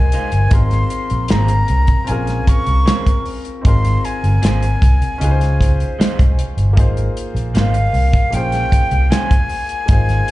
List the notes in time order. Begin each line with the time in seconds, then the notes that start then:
Already playing: C#4 D#4 F4 G#4 A#4 C5 G#5
0.12 G#3 D#4 F4 C5, closed hi-hat
0.32 G1, closed hi-hat
0.47 G#1 B3 D#4 F4, kick, closed hi-hat
0.52 C4 G#4 A#4 C6
0.71 snare, closed hi-hat
0.90 closed hi-hat
1.10 A#1, closed hi-hat
1.28 G#1 A#3 F4 G#4 C5 A#5, snare, closed hi-hat
1.48 closed hi-hat
1.68 C2, closed hi-hat
1.87 kick, closed hi-hat
2.04 C4 C#4 F4 G#5, closed hi-hat
2.09 A#1 G#4 A#4
2.27 snare, closed hi-hat
2.47 A#4 C#6, muted fingered electric bass stroke, kick, closed hi-hat
2.66 C2, closed hi-hat
2.86 G#3 C#4 F4 C5, snare, closed hi-hat
3.06 kick, closed hi-hat
3.25 open hi-hat
3.45 closed hi-hat
3.61 G#1 C4 D#4 F4, kick, closed hi-hat
3.66 G#4 A#4 C6
3.85 snare, closed hi-hat
4.05 G#5, closed hi-hat
4.24 G1, closed hi-hat
4.42 G#1 A#3 F4 G#4 C5, snare, closed hi-hat
4.63 closed hi-hat
4.82 C2, kick, closed hi-hat
5.02 closed hi-hat
5.18 C#2 C#4 D#4 F4, closed hi-hat
5.23 G#4 B4
5.31 C5
5.41 snare, closed hi-hat
5.61 C5, kick, closed hi-hat
5.80 closed hi-hat
5.99 G#3 D#4 F4 C5, muted fingered electric bass stroke, snare, closed hi-hat
6.19 C2, kick, closed hi-hat
6.39 closed hi-hat
6.57 G1, closed hi-hat
6.73 A#3 D#4 F4
6.77 G#1 G#4 C5, kick, closed hi-hat
6.97 closed hi-hat
7.17 closed hi-hat
7.35 A#1, closed hi-hat
7.53 G#1 A#3 D#4 F4 A#4 C5, snare, closed hi-hat
7.57 F5
7.74 closed hi-hat
7.93 C2, open hi-hat
8.13 kick, closed hi-hat
8.30 A#1 A#3 C#4 F4 G5, closed hi-hat
8.35 G#4 C5
8.52 snare, closed hi-hat
8.72 muted fingered electric bass stroke, kick, closed hi-hat
8.91 C2, closed hi-hat
9.10 G#3 C#4 F4 C5 G#5, snare, closed hi-hat
9.31 kick, closed hi-hat
9.49 open hi-hat
9.69 closed hi-hat
9.86 G#1 A#3 D#4 F4, kick, closed hi-hat
9.91 G#4 C5
10.09 snare, closed hi-hat
10.28 closed hi-hat